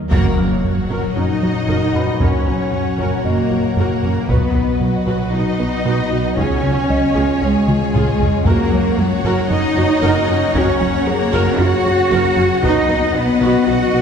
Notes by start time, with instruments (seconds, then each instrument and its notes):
Already playing: ambient pad F#3 A#3 A#4 D#5
0.11 double bass section F#1, analog synth bass F#2, ambient pad A#2 F#3 F#4 F#5, french horn section A#3, cello section A#3, viola section F#4 A#4, violin section A#4 C#5 F#5, taiko, impact
0.38 double bass section F#1, analog synth bass F#3, viola section C#4 F#4, grand piano F6
0.64 analog synth bass F#2, french horn section F#3, cello section F#3, violin section F#4
0.90 double bass section F#1, analog synth bass F#2, viola section F#4 A#4
1.16 double bass section F#1, analog synth bass F#2, viola section C#4 F#4, cello section D#4, french horn section D#4, violin section D#5, grand piano A#5
1.42 double bass section F#1, analog synth bass F#3, viola section F#4
1.68 double bass section F#1, analog synth bass F#2, viola section F#4 A#4
1.94 double bass section F#1, analog synth bass F#2, viola section C#4 F#4, grand piano B4 B5
2.20 double bass section F#1, analog synth bass F#2, french horn section C#4, cello section C#4, viola section F#4 A#4, violin section C#5, taiko
2.46 double bass section F#1, analog synth bass F#3, viola section C#4 F#4
2.73 analog synth bass F#2
2.99 double bass section F#1, analog synth bass F#2, viola section F#4 A#4
3.24 double bass section F#1, analog synth bass F#2, french horn section A#3, cello section A#3, viola section C#4 F#4, violin section A#4, grand piano D#5
3.50 double bass section F#1, analog synth bass F#3, viola section F#4
3.76 double bass section F#1, analog synth bass F#2, french horn section A#3, cello section A#3, viola section F#4 A#4, violin section A#4
4.03 double bass section F#1, analog synth bass F#2, viola section C#4 F#4
4.28 double bass section B1, analog synth bass B2, ambient pad B3, french horn section B3, cello section B3, viola section F#4 B4, violin section B4 D#5, grand piano F#5, taiko
4.55 double bass section B1, analog synth bass B3, viola section D#4 F#4
4.81 analog synth bass B2, cello section F#3, french horn section F#3, violin section F#4
5.07 double bass section B1, analog synth bass B2, viola section F#4 B4
5.33 double bass section B1, analog synth bass B2, viola section D#4 F#4, french horn section D#4, cello section D#4, violin section D#5
5.59 double bass section B1, analog synth bass B3, viola section F#4
5.85 double bass section B1, analog synth bass B2, viola section F#4 B4
6.11 double bass section B1, analog synth bass B2, viola section D#4 F#4
6.37 analog synth bass C#2, double bass section C#2, ambient pad G#3 C#4 F4 C#5, cello section C#4, french horn section C#4, viola section F4 G#4, violin section C#5 G#5, taiko
6.63 double bass section C#2, analog synth bass C#3, viola section C#4 F4
6.90 analog synth bass C#2, grand piano D#5
7.15 analog synth bass C#2, double bass section C#2, viola section F4 G#4
7.41 analog synth bass C#2, double bass section C#2, french horn section G#3, cello section G#3, viola section C#4 F4, violin section G#4
7.68 double bass section C#2, analog synth bass C#3, viola section F4, taiko mid
7.94 double bass section C#2, analog synth bass C#2, french horn section G#3, cello section G#3, viola section F4 G#4, violin section G#4, taiko low-mid
8.20 double bass section C#2, analog synth bass C#2, viola section C#4 F4, taiko low
8.45 double bass section F#1, analog synth bass F#2, ambient pad A#3 F#4, cello section A#3, french horn section A#3, viola section F#4 A#4, violin section A#4 C#5 F#5, taiko
8.72 double bass section F#1, analog synth bass F#3, viola section C#4 F#4
8.98 analog synth bass F#2, french horn section F#3, cello section F#3, violin section F#4
9.24 double bass section F#1, analog synth bass F#2, viola section F#4 A#4
9.50 double bass section F#1, analog synth bass F#2, viola section C#4 F#4, french horn section D#4, cello section D#4, violin section D#5
9.76 double bass section F#1, analog synth bass F#3, viola section F#4, grand piano C#5
10.02 double bass section F#1, analog synth bass F#2, viola section F#4 A#4
10.28 double bass section F#1, analog synth bass F#2, viola section C#4 F#4
10.54 double bass section F#1, analog synth bass F#2, cello section C#4, french horn section C#4, viola section F#4 A#4, violin section C#5, taiko
10.81 double bass section F#1, analog synth bass F#3, viola section C#4 F#4
11.06 analog synth bass F#2, cello section A#3, french horn section A#3, grand piano G#4, violin section A#4
11.33 double bass section F#1, analog synth bass F#2, viola section F#4 A#4
11.59 double bass section F#1, analog synth bass F#2, viola section C#4 F#4, cello section F#4, french horn section F#4, violin section F#5
11.85 double bass section F#1, analog synth bass F#3, viola section F#4
12.11 double bass section F#1, analog synth bass F#2, viola section F#4 A#4
12.37 double bass section F#1, analog synth bass F#2, viola section C#4 F#4
12.62 double bass section B1, analog synth bass B2, ambient pad B3 D#4 B4, french horn section D#4, cello section D#4, viola section F#4 B4, grand piano B4, violin section D#5 F#5, taiko
12.89 double bass section B1, analog synth bass B3, viola section D#4 F#4
13.15 analog synth bass B2, french horn section B3, cello section B3, violin section B4
13.41 double bass section B1, analog synth bass B2, viola section F#4 B4
13.66 double bass section B1, analog synth bass B2, viola section D#4 F#4, french horn section F#4, cello section F#4, violin section F#5
13.93 double bass section B1, analog synth bass B3, viola section F#4